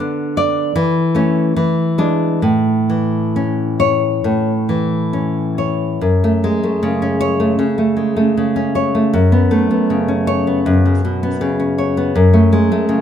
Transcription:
0, 0, Header, 1, 2, 480
1, 0, Start_track
1, 0, Key_signature, 3, "major"
1, 0, Tempo, 784314
1, 963, Tempo, 891530
1, 1430, Time_signature, 4, 2, 24, 8
1, 3363, Tempo, 808625
1, 3364, Key_signature, 3, "minor"
1, 3843, Tempo, 761421
1, 6723, Tempo, 734394
1, 7772, End_track
2, 0, Start_track
2, 0, Title_t, "Nylon-string guitar"
2, 0, Program_c, 0, 24
2, 0, Note_on_c, 0, 50, 54
2, 0, Note_on_c, 0, 59, 49
2, 0, Note_on_c, 0, 62, 48
2, 227, Note_on_c, 0, 74, 65
2, 449, Note_off_c, 0, 50, 0
2, 462, Note_on_c, 0, 52, 64
2, 466, Note_off_c, 0, 74, 0
2, 468, Note_off_c, 0, 62, 0
2, 470, Note_off_c, 0, 59, 0
2, 702, Note_on_c, 0, 57, 38
2, 707, Note_on_c, 0, 61, 52
2, 934, Note_off_c, 0, 57, 0
2, 936, Note_off_c, 0, 61, 0
2, 944, Note_off_c, 0, 52, 0
2, 958, Note_on_c, 0, 52, 57
2, 1183, Note_on_c, 0, 56, 43
2, 1185, Note_on_c, 0, 62, 56
2, 1405, Note_off_c, 0, 56, 0
2, 1406, Note_off_c, 0, 62, 0
2, 1414, Note_off_c, 0, 52, 0
2, 1420, Note_on_c, 0, 45, 51
2, 1675, Note_on_c, 0, 52, 39
2, 1925, Note_on_c, 0, 61, 41
2, 2160, Note_on_c, 0, 73, 61
2, 2380, Note_off_c, 0, 45, 0
2, 2400, Note_on_c, 0, 45, 48
2, 2404, Note_off_c, 0, 52, 0
2, 2547, Note_off_c, 0, 73, 0
2, 2641, Note_on_c, 0, 52, 36
2, 2645, Note_off_c, 0, 61, 0
2, 2879, Note_on_c, 0, 61, 41
2, 3121, Note_on_c, 0, 73, 46
2, 3339, Note_off_c, 0, 45, 0
2, 3354, Note_on_c, 0, 42, 52
2, 3361, Note_off_c, 0, 52, 0
2, 3361, Note_off_c, 0, 73, 0
2, 3362, Note_off_c, 0, 61, 0
2, 3486, Note_on_c, 0, 57, 46
2, 3605, Note_on_c, 0, 56, 43
2, 3714, Note_off_c, 0, 57, 0
2, 3721, Note_on_c, 0, 57, 41
2, 3835, Note_on_c, 0, 49, 48
2, 3957, Note_on_c, 0, 61, 46
2, 4074, Note_on_c, 0, 73, 71
2, 4188, Note_off_c, 0, 57, 0
2, 4195, Note_on_c, 0, 57, 43
2, 4266, Note_off_c, 0, 73, 0
2, 4287, Note_off_c, 0, 42, 0
2, 4307, Note_off_c, 0, 49, 0
2, 4314, Note_on_c, 0, 49, 51
2, 4316, Note_off_c, 0, 56, 0
2, 4428, Note_off_c, 0, 57, 0
2, 4435, Note_on_c, 0, 57, 42
2, 4553, Note_on_c, 0, 56, 34
2, 4671, Note_off_c, 0, 57, 0
2, 4678, Note_on_c, 0, 57, 46
2, 4680, Note_off_c, 0, 61, 0
2, 4803, Note_off_c, 0, 49, 0
2, 4810, Note_on_c, 0, 49, 48
2, 4927, Note_on_c, 0, 61, 45
2, 5049, Note_on_c, 0, 73, 50
2, 5164, Note_off_c, 0, 57, 0
2, 5172, Note_on_c, 0, 57, 38
2, 5290, Note_on_c, 0, 42, 58
2, 5292, Note_off_c, 0, 61, 0
2, 5292, Note_off_c, 0, 73, 0
2, 5293, Note_off_c, 0, 56, 0
2, 5293, Note_off_c, 0, 57, 0
2, 5297, Note_off_c, 0, 49, 0
2, 5407, Note_on_c, 0, 59, 46
2, 5526, Note_on_c, 0, 57, 44
2, 5643, Note_off_c, 0, 59, 0
2, 5650, Note_on_c, 0, 59, 44
2, 5772, Note_on_c, 0, 49, 41
2, 5888, Note_on_c, 0, 61, 42
2, 6007, Note_on_c, 0, 73, 67
2, 6125, Note_off_c, 0, 59, 0
2, 6133, Note_on_c, 0, 59, 37
2, 6197, Note_off_c, 0, 73, 0
2, 6218, Note_off_c, 0, 42, 0
2, 6243, Note_off_c, 0, 57, 0
2, 6252, Note_on_c, 0, 42, 58
2, 6367, Note_off_c, 0, 49, 0
2, 6374, Note_on_c, 0, 49, 39
2, 6492, Note_off_c, 0, 49, 0
2, 6494, Note_on_c, 0, 47, 36
2, 6602, Note_off_c, 0, 59, 0
2, 6606, Note_off_c, 0, 61, 0
2, 6610, Note_on_c, 0, 59, 45
2, 6721, Note_off_c, 0, 47, 0
2, 6724, Note_on_c, 0, 49, 50
2, 6846, Note_on_c, 0, 61, 40
2, 6968, Note_on_c, 0, 73, 48
2, 7084, Note_off_c, 0, 59, 0
2, 7092, Note_on_c, 0, 59, 50
2, 7178, Note_off_c, 0, 42, 0
2, 7201, Note_off_c, 0, 49, 0
2, 7203, Note_off_c, 0, 61, 0
2, 7205, Note_off_c, 0, 73, 0
2, 7207, Note_off_c, 0, 59, 0
2, 7211, Note_on_c, 0, 42, 56
2, 7329, Note_on_c, 0, 57, 46
2, 7453, Note_on_c, 0, 56, 44
2, 7570, Note_off_c, 0, 57, 0
2, 7578, Note_on_c, 0, 57, 45
2, 7690, Note_on_c, 0, 49, 48
2, 7772, Note_off_c, 0, 42, 0
2, 7772, Note_off_c, 0, 49, 0
2, 7772, Note_off_c, 0, 56, 0
2, 7772, Note_off_c, 0, 57, 0
2, 7772, End_track
0, 0, End_of_file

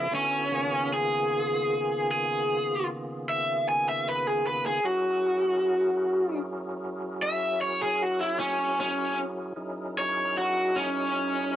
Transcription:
0, 0, Header, 1, 3, 480
1, 0, Start_track
1, 0, Tempo, 788436
1, 67, Time_signature, 12, 3, 24, 8
1, 7038, End_track
2, 0, Start_track
2, 0, Title_t, "Overdriven electric guitar"
2, 0, Program_c, 0, 29
2, 0, Note_on_c, 0, 64, 79
2, 78, Note_off_c, 0, 64, 0
2, 90, Note_on_c, 0, 61, 111
2, 544, Note_off_c, 0, 61, 0
2, 570, Note_on_c, 0, 68, 99
2, 1256, Note_off_c, 0, 68, 0
2, 1285, Note_on_c, 0, 68, 105
2, 1741, Note_off_c, 0, 68, 0
2, 2006, Note_on_c, 0, 76, 88
2, 2228, Note_off_c, 0, 76, 0
2, 2246, Note_on_c, 0, 80, 75
2, 2352, Note_off_c, 0, 80, 0
2, 2368, Note_on_c, 0, 76, 88
2, 2473, Note_off_c, 0, 76, 0
2, 2489, Note_on_c, 0, 71, 85
2, 2600, Note_off_c, 0, 71, 0
2, 2600, Note_on_c, 0, 68, 85
2, 2709, Note_off_c, 0, 68, 0
2, 2720, Note_on_c, 0, 71, 80
2, 2829, Note_off_c, 0, 71, 0
2, 2839, Note_on_c, 0, 68, 75
2, 2954, Note_off_c, 0, 68, 0
2, 2954, Note_on_c, 0, 66, 103
2, 3885, Note_off_c, 0, 66, 0
2, 4399, Note_on_c, 0, 76, 109
2, 4625, Note_off_c, 0, 76, 0
2, 4636, Note_on_c, 0, 73, 92
2, 4747, Note_off_c, 0, 73, 0
2, 4759, Note_on_c, 0, 68, 82
2, 4886, Note_off_c, 0, 68, 0
2, 4886, Note_on_c, 0, 66, 83
2, 4992, Note_off_c, 0, 66, 0
2, 4995, Note_on_c, 0, 64, 91
2, 5106, Note_off_c, 0, 64, 0
2, 5111, Note_on_c, 0, 61, 91
2, 5340, Note_off_c, 0, 61, 0
2, 5358, Note_on_c, 0, 61, 101
2, 5584, Note_off_c, 0, 61, 0
2, 6078, Note_on_c, 0, 73, 105
2, 6304, Note_off_c, 0, 73, 0
2, 6316, Note_on_c, 0, 66, 94
2, 6543, Note_off_c, 0, 66, 0
2, 6550, Note_on_c, 0, 61, 93
2, 7013, Note_off_c, 0, 61, 0
2, 7038, End_track
3, 0, Start_track
3, 0, Title_t, "Tonewheel organ"
3, 0, Program_c, 1, 16
3, 66, Note_on_c, 1, 59, 67
3, 67, Note_on_c, 1, 64, 67
3, 67, Note_on_c, 1, 69, 64
3, 68, Note_on_c, 1, 50, 62
3, 71, Note_on_c, 1, 66, 62
3, 72, Note_on_c, 1, 61, 62
3, 306, Note_off_c, 1, 59, 0
3, 307, Note_off_c, 1, 50, 0
3, 307, Note_off_c, 1, 64, 0
3, 307, Note_off_c, 1, 69, 0
3, 309, Note_off_c, 1, 61, 0
3, 309, Note_off_c, 1, 66, 0
3, 309, Note_on_c, 1, 68, 75
3, 310, Note_on_c, 1, 51, 74
3, 314, Note_on_c, 1, 65, 76
3, 315, Note_on_c, 1, 49, 73
3, 315, Note_on_c, 1, 59, 76
3, 317, Note_on_c, 1, 58, 74
3, 2922, Note_off_c, 1, 51, 0
3, 2922, Note_off_c, 1, 68, 0
3, 2924, Note_off_c, 1, 59, 0
3, 2924, Note_off_c, 1, 65, 0
3, 2925, Note_off_c, 1, 49, 0
3, 2925, Note_off_c, 1, 58, 0
3, 2944, Note_on_c, 1, 70, 69
3, 2947, Note_on_c, 1, 54, 62
3, 2949, Note_on_c, 1, 68, 64
3, 2950, Note_on_c, 1, 61, 64
3, 2950, Note_on_c, 1, 66, 73
3, 2953, Note_on_c, 1, 64, 70
3, 5799, Note_off_c, 1, 70, 0
3, 5801, Note_off_c, 1, 54, 0
3, 5802, Note_off_c, 1, 61, 0
3, 5802, Note_off_c, 1, 66, 0
3, 5802, Note_off_c, 1, 68, 0
3, 5804, Note_off_c, 1, 64, 0
3, 5819, Note_on_c, 1, 70, 64
3, 5820, Note_on_c, 1, 64, 74
3, 5821, Note_on_c, 1, 63, 71
3, 5823, Note_on_c, 1, 68, 68
3, 5825, Note_on_c, 1, 54, 71
3, 5829, Note_on_c, 1, 61, 66
3, 7038, Note_off_c, 1, 54, 0
3, 7038, Note_off_c, 1, 61, 0
3, 7038, Note_off_c, 1, 63, 0
3, 7038, Note_off_c, 1, 64, 0
3, 7038, Note_off_c, 1, 68, 0
3, 7038, Note_off_c, 1, 70, 0
3, 7038, End_track
0, 0, End_of_file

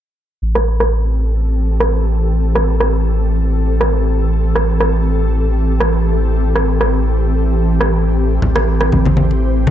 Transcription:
0, 0, Header, 1, 4, 480
1, 0, Start_track
1, 0, Key_signature, 0, "minor"
1, 0, Tempo, 500000
1, 402, Time_signature, 4, 2, 24, 8
1, 9319, End_track
2, 0, Start_track
2, 0, Title_t, "Ambient pad"
2, 0, Program_c, 0, 92
2, 402, Note_on_c, 0, 52, 78
2, 403, Note_on_c, 0, 60, 73
2, 403, Note_on_c, 0, 67, 71
2, 403, Note_on_c, 0, 69, 87
2, 8070, Note_off_c, 0, 69, 0
2, 8089, Note_on_c, 0, 72, 89
2, 9319, Note_off_c, 0, 52, 0
2, 9319, Note_off_c, 0, 60, 0
2, 9319, Note_off_c, 0, 67, 0
2, 9319, Note_off_c, 0, 72, 0
2, 9319, End_track
3, 0, Start_track
3, 0, Title_t, "Sub bass"
3, 0, Program_c, 1, 38
3, 403, Note_on_c, 1, 33, 83
3, 8061, Note_off_c, 1, 33, 0
3, 8083, Note_on_c, 1, 33, 87
3, 9319, Note_off_c, 1, 33, 0
3, 9319, End_track
4, 0, Start_track
4, 0, Title_t, "Drums"
4, 531, Note_on_c, 9, 37, 74
4, 627, Note_off_c, 9, 37, 0
4, 771, Note_on_c, 9, 37, 75
4, 867, Note_off_c, 9, 37, 0
4, 1732, Note_on_c, 9, 37, 84
4, 1828, Note_off_c, 9, 37, 0
4, 2452, Note_on_c, 9, 37, 79
4, 2548, Note_off_c, 9, 37, 0
4, 2692, Note_on_c, 9, 37, 78
4, 2788, Note_off_c, 9, 37, 0
4, 3654, Note_on_c, 9, 37, 85
4, 3750, Note_off_c, 9, 37, 0
4, 4373, Note_on_c, 9, 37, 80
4, 4469, Note_off_c, 9, 37, 0
4, 4613, Note_on_c, 9, 37, 80
4, 4709, Note_off_c, 9, 37, 0
4, 5572, Note_on_c, 9, 37, 87
4, 5668, Note_off_c, 9, 37, 0
4, 6293, Note_on_c, 9, 37, 77
4, 6389, Note_off_c, 9, 37, 0
4, 6534, Note_on_c, 9, 37, 79
4, 6630, Note_off_c, 9, 37, 0
4, 7494, Note_on_c, 9, 37, 88
4, 7590, Note_off_c, 9, 37, 0
4, 8086, Note_on_c, 9, 64, 91
4, 8182, Note_off_c, 9, 64, 0
4, 8213, Note_on_c, 9, 62, 47
4, 8214, Note_on_c, 9, 37, 77
4, 8309, Note_off_c, 9, 62, 0
4, 8310, Note_off_c, 9, 37, 0
4, 8453, Note_on_c, 9, 62, 37
4, 8454, Note_on_c, 9, 37, 80
4, 8549, Note_off_c, 9, 62, 0
4, 8550, Note_off_c, 9, 37, 0
4, 8566, Note_on_c, 9, 64, 69
4, 8569, Note_on_c, 9, 63, 61
4, 8662, Note_off_c, 9, 64, 0
4, 8665, Note_off_c, 9, 63, 0
4, 8692, Note_on_c, 9, 62, 42
4, 8699, Note_on_c, 9, 63, 78
4, 8788, Note_off_c, 9, 62, 0
4, 8795, Note_off_c, 9, 63, 0
4, 8801, Note_on_c, 9, 63, 94
4, 8897, Note_off_c, 9, 63, 0
4, 8937, Note_on_c, 9, 62, 31
4, 9033, Note_off_c, 9, 62, 0
4, 9283, Note_on_c, 9, 63, 100
4, 9285, Note_on_c, 9, 62, 46
4, 9319, Note_off_c, 9, 62, 0
4, 9319, Note_off_c, 9, 63, 0
4, 9319, End_track
0, 0, End_of_file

